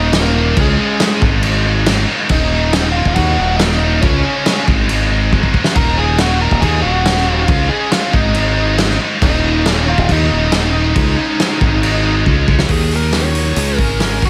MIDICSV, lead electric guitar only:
0, 0, Header, 1, 2, 480
1, 0, Start_track
1, 0, Key_signature, -6, "minor"
1, 0, Tempo, 433839
1, 624, Time_signature, 4, 2, 24, 8
1, 15818, End_track
2, 0, Start_track
2, 0, Title_t, "Lead electric guitar"
2, 0, Program_c, 0, 29
2, 0, Note_on_c, 0, 63, 82
2, 0, Note_on_c, 0, 75, 111
2, 143, Note_off_c, 0, 63, 0
2, 185, Note_off_c, 0, 75, 0
2, 214, Note_on_c, 0, 58, 74
2, 224, Note_on_c, 0, 70, 99
2, 628, Note_off_c, 0, 58, 0
2, 668, Note_on_c, 0, 56, 66
2, 672, Note_off_c, 0, 70, 0
2, 676, Note_on_c, 0, 68, 87
2, 1321, Note_off_c, 0, 56, 0
2, 1325, Note_off_c, 0, 68, 0
2, 2565, Note_on_c, 0, 75, 98
2, 2586, Note_on_c, 0, 63, 71
2, 3227, Note_off_c, 0, 75, 0
2, 3228, Note_on_c, 0, 77, 105
2, 3238, Note_off_c, 0, 63, 0
2, 3277, Note_on_c, 0, 65, 76
2, 3480, Note_off_c, 0, 77, 0
2, 3485, Note_on_c, 0, 78, 115
2, 3491, Note_off_c, 0, 65, 0
2, 3524, Note_on_c, 0, 66, 89
2, 3936, Note_on_c, 0, 75, 97
2, 3958, Note_off_c, 0, 66, 0
2, 3976, Note_on_c, 0, 63, 79
2, 3986, Note_off_c, 0, 78, 0
2, 4423, Note_off_c, 0, 63, 0
2, 4437, Note_off_c, 0, 75, 0
2, 4441, Note_on_c, 0, 73, 82
2, 4483, Note_on_c, 0, 61, 64
2, 5124, Note_off_c, 0, 73, 0
2, 5145, Note_off_c, 0, 61, 0
2, 6377, Note_on_c, 0, 82, 108
2, 6388, Note_on_c, 0, 70, 86
2, 6605, Note_off_c, 0, 70, 0
2, 6607, Note_on_c, 0, 80, 101
2, 6612, Note_on_c, 0, 68, 82
2, 6622, Note_off_c, 0, 82, 0
2, 6836, Note_off_c, 0, 68, 0
2, 6850, Note_off_c, 0, 80, 0
2, 6854, Note_on_c, 0, 78, 98
2, 6874, Note_on_c, 0, 66, 75
2, 7077, Note_off_c, 0, 78, 0
2, 7087, Note_off_c, 0, 66, 0
2, 7093, Note_on_c, 0, 70, 83
2, 7097, Note_on_c, 0, 82, 89
2, 7308, Note_on_c, 0, 80, 105
2, 7313, Note_off_c, 0, 70, 0
2, 7318, Note_on_c, 0, 68, 75
2, 7340, Note_off_c, 0, 82, 0
2, 7544, Note_off_c, 0, 80, 0
2, 7547, Note_off_c, 0, 68, 0
2, 7547, Note_on_c, 0, 66, 71
2, 7549, Note_on_c, 0, 78, 80
2, 8080, Note_off_c, 0, 78, 0
2, 8080, Note_on_c, 0, 77, 80
2, 8235, Note_off_c, 0, 66, 0
2, 8278, Note_on_c, 0, 65, 70
2, 8285, Note_off_c, 0, 77, 0
2, 8289, Note_on_c, 0, 77, 93
2, 8507, Note_off_c, 0, 65, 0
2, 8509, Note_off_c, 0, 77, 0
2, 8511, Note_on_c, 0, 68, 72
2, 8513, Note_on_c, 0, 80, 84
2, 8745, Note_off_c, 0, 68, 0
2, 8752, Note_on_c, 0, 65, 71
2, 8761, Note_off_c, 0, 80, 0
2, 8765, Note_on_c, 0, 77, 90
2, 8984, Note_off_c, 0, 65, 0
2, 8990, Note_on_c, 0, 63, 66
2, 9002, Note_on_c, 0, 75, 82
2, 9015, Note_off_c, 0, 77, 0
2, 9915, Note_off_c, 0, 63, 0
2, 9921, Note_off_c, 0, 75, 0
2, 10211, Note_on_c, 0, 63, 79
2, 10212, Note_on_c, 0, 75, 86
2, 10776, Note_off_c, 0, 75, 0
2, 10776, Note_on_c, 0, 73, 86
2, 10885, Note_off_c, 0, 63, 0
2, 10948, Note_on_c, 0, 77, 103
2, 10950, Note_off_c, 0, 73, 0
2, 10966, Note_on_c, 0, 65, 78
2, 11171, Note_off_c, 0, 65, 0
2, 11185, Note_off_c, 0, 77, 0
2, 11192, Note_on_c, 0, 75, 95
2, 11205, Note_on_c, 0, 63, 77
2, 13539, Note_off_c, 0, 75, 0
2, 13546, Note_off_c, 0, 63, 0
2, 14065, Note_on_c, 0, 68, 84
2, 14294, Note_off_c, 0, 68, 0
2, 14337, Note_on_c, 0, 70, 79
2, 14551, Note_off_c, 0, 70, 0
2, 14576, Note_on_c, 0, 73, 82
2, 15240, Note_off_c, 0, 73, 0
2, 15240, Note_on_c, 0, 70, 82
2, 15496, Note_off_c, 0, 70, 0
2, 15521, Note_on_c, 0, 70, 78
2, 15749, Note_off_c, 0, 70, 0
2, 15765, Note_on_c, 0, 66, 87
2, 15818, Note_off_c, 0, 66, 0
2, 15818, End_track
0, 0, End_of_file